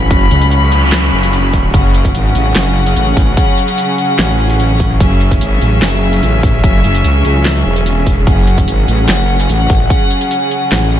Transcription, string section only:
0.00 11.00 C#3 medium
0.00 11.00 F#3 medium
0.00 11.00 C#4 medium
0.00 1.70 F#4 medium
0.00 1.73 B5 medium
1.74 11.00 G#4 medium
1.74 4.99 F#5 medium
5.00 8.26 E5 medium
8.27 11.00 F#5 medium

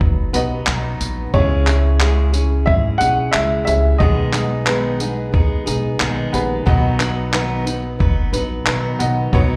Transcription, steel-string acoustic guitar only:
0.00 0.34 F#3 medium
0.00 0.34 B3 medium
0.00 0.33 D#4 medium
0.00 0.32 B4 medium
0.33 0.65 F#3 medium
0.33 0.66 B3 medium
0.33 0.67 D#4 medium
0.33 0.67 B4 medium
0.67 1.34 F#3 medium
0.67 1.34 B3 medium
0.67 1.34 D#4 medium
0.67 1.34 B4 medium
1.33 1.67 C#3 medium
1.33 1.67 G#3 medium
1.33 1.67 C#4 medium
1.33 1.67 E4 medium
1.33 1.66 G#4 medium
1.67 2.00 C#4 soft
1.67 2.00 E4 medium
1.67 2.00 G#4 medium
2.00 2.34 C#3 medium
2.00 2.34 G#3 medium
2.00 2.34 C#4 medium
2.00 2.33 E4 medium
2.00 2.31 G#4 medium
2.33 2.66 C#4 soft
2.33 2.67 E4 soft
2.33 2.66 G#4 medium
2.66 3.00 G#3 medium
2.66 3.00 C#4 medium
2.66 2.99 E4 medium
2.66 2.98 G#4 medium
2.99 3.33 C#4 soft
2.99 3.33 E4 soft
2.99 3.33 G#4 medium
3.33 3.99 C#3 medium
3.33 4.00 G#3 medium
3.33 4.00 C#4 medium
3.33 4.00 E4 medium
3.33 4.01 G#4 medium
3.99 4.33 B2 medium
3.99 4.33 D#3 medium
3.99 4.33 G#3 medium
3.99 4.33 B3 medium
3.99 4.33 D#4 medium
3.99 4.32 G#4 loud
4.33 4.66 G#3 soft
4.33 4.66 B3 soft
4.33 4.67 D#4 medium
4.33 4.66 G#4 medium
4.67 5.00 B2 medium
4.67 5.00 D#3 medium
4.67 5.00 G#3 medium
4.67 5.01 B3 medium
4.67 5.00 D#4 medium
4.67 4.99 G#4 medium
5.00 5.31 G#3 soft
5.00 5.32 B3 soft
5.00 5.33 D#4 soft
5.00 5.33 G#4 soft
5.32 5.66 G#3 medium
5.32 5.66 B3 medium
5.32 5.65 D#4 medium
5.32 5.65 G#4 medium
5.66 5.98 G#3 medium
5.66 5.99 B3 medium
5.66 5.99 D#4 medium
5.66 5.99 G#4 medium
5.99 6.66 D#3 medium
5.99 6.66 G#3 medium
5.99 6.66 B3 medium
5.99 6.67 D#4 medium
5.99 6.67 G#4 medium
6.66 6.99 B2 medium
6.66 7.00 D#3 loud
6.66 7.00 F#3 medium
6.66 7.00 B3 medium
6.66 6.99 D#4 medium
6.66 6.98 B4 loud
6.99 7.32 F#3 medium
6.99 7.32 B3 medium
6.99 7.33 D#4 medium
6.99 7.33 B4 medium
7.32 7.66 B2 medium
7.32 7.66 D#3 medium
7.32 7.66 F#3 medium
7.32 7.66 B3 medium
7.32 7.66 D#4 medium
7.32 7.65 B4 medium
7.66 7.98 F#3 soft
7.66 7.99 B3 soft
7.66 8.00 D#4 medium
7.66 8.00 B4 medium
7.99 8.33 F#3 medium
7.99 8.33 B3 medium
7.99 8.32 D#4 medium
7.99 8.31 B4 medium
8.33 8.66 F#3 medium
8.33 8.66 B3 medium
8.33 8.66 D#4 medium
8.33 8.66 B4 medium
8.66 9.32 B2 medium
8.66 9.32 D#3 medium
8.66 9.33 F#3 medium
8.66 9.33 B3 medium
8.66 9.34 D#4 medium
8.66 9.33 B4 loud
9.33 9.56 B2 loud
9.33 9.56 D#3 medium
9.33 9.56 F#3 medium
9.33 9.56 B3 loud
9.33 9.56 D#4 loud
9.33 9.56 B4 loud

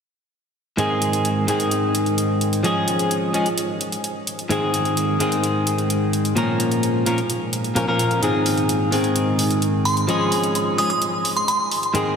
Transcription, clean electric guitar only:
0.77 1.45 G#2 medium
0.77 1.45 D#3 medium
0.77 1.45 G#3 medium
0.77 1.46 C4 medium
0.77 1.46 G#4 medium
1.47 2.61 G#2 medium
1.47 2.61 D#3 medium
1.47 2.62 G#3 medium
1.47 2.62 C4 medium
1.47 2.62 G#4 medium
2.63 3.31 F3 medium
2.63 3.31 G#3 medium
2.63 3.32 C#4 medium
2.63 3.32 G#4 medium
3.34 3.46 F3 medium
3.34 3.46 G#3 medium
3.34 3.47 C#4 medium
3.34 3.47 G#4 medium
4.49 5.17 G#2 medium
4.49 5.17 D#3 medium
4.49 5.18 G#3 medium
4.49 5.18 C4 medium
4.49 5.18 G#4 medium
5.19 6.33 G#2 medium
5.19 6.33 D#3 medium
5.19 6.34 G#3 medium
5.19 6.34 C4 medium
5.19 6.34 G#4 medium
6.35 7.03 A#2 medium
6.35 7.03 F3 medium
6.35 7.04 A#3 medium
6.35 7.04 C#4 medium
6.35 7.04 A#4 medium
7.06 7.18 A#2 medium
7.06 7.19 F3 soft
7.06 7.19 A#3 medium
7.06 7.19 C#4 medium
7.06 7.19 A#4 medium
7.75 7.85 A#2 medium
7.75 7.85 F3 medium
7.75 7.85 A#3 medium
7.75 7.85 C#4 medium
7.75 7.85 A#4 medium
7.87 8.20 A#2 medium
7.87 8.20 F3 medium
7.87 8.20 A#3 medium
7.87 8.20 C#4 medium
7.87 8.20 A#4 loud
8.21 8.89 G#2 medium
8.21 8.89 D#3 medium
8.21 8.90 G#3 medium
8.21 8.90 C4 medium
8.21 8.90 G#4 medium
8.91 10.05 G#2 medium
8.91 10.06 D#3 medium
8.91 10.06 G#3 medium
8.91 10.06 C4 medium
8.91 10.06 G#4 medium
10.07 10.75 F3 medium
10.07 10.75 G#3 medium
10.07 10.76 C#4 medium
10.07 10.76 G#4 medium
10.78 10.90 F3 medium
10.78 10.91 G#3 medium
10.78 10.91 C#4 medium
10.78 10.91 G#4 medium
11.94 12.16 G#2 medium
11.94 12.16 D#3 medium
11.94 12.16 G#3 medium
11.94 12.16 C4 medium
11.94 12.16 G#4 medium

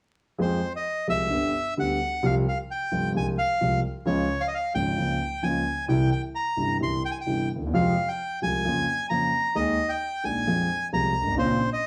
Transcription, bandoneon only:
0.41 0.73 C5 medium
0.76 1.07 D#5 medium
1.09 1.74 E5 medium
1.80 2.26 F#5 medium
2.25 2.35 F5 medium
2.48 2.58 F5 medium
2.71 3.13 G5 medium
3.17 3.27 G#5 medium
3.38 3.80 F5 medium
4.06 4.41 C#5 medium
4.41 4.47 F5 medium
4.48 4.54 D#5 medium
4.54 4.73 F5 medium
4.75 5.45 G5 medium
5.43 5.85 G#5 medium
5.89 6.10 G5 medium
6.12 6.22 G5 medium
6.35 6.77 A#5 medium
6.83 7.03 C6 medium
7.05 7.11 G5 medium
7.11 7.18 G#5 medium
7.21 7.49 G5 medium
7.74 8.09 F5 medium
8.08 8.40 G5 medium
8.43 9.07 G#5 medium
9.10 9.57 A#5 medium
9.56 9.91 D#5 medium
9.89 10.25 G5 medium
10.25 10.88 G#5 medium
10.94 11.35 A#5 medium
11.39 11.70 C5 medium
11.73 11.87 D#5 medium

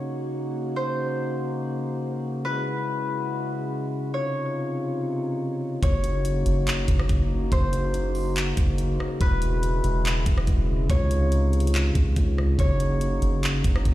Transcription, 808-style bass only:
5.83 6.43 F#1 loud
6.46 6.87 F#1 loud
6.88 7.09 F#1 loud
7.09 7.50 F#1 loud
7.52 8.53 F#1 loud
8.57 8.98 F#1 loud
9.21 9.82 E1 loud
9.84 10.25 E1 loud
10.26 10.47 E1 loud
10.47 10.88 E1 loud
10.90 11.91 C#2 loud
11.95 12.16 C#2 loud
12.17 12.57 C#2 loud
12.59 13.20 F#1 loud
13.22 13.63 F#1 loud
13.65 13.85 F#1 loud
13.85 13.94 F#1 loud

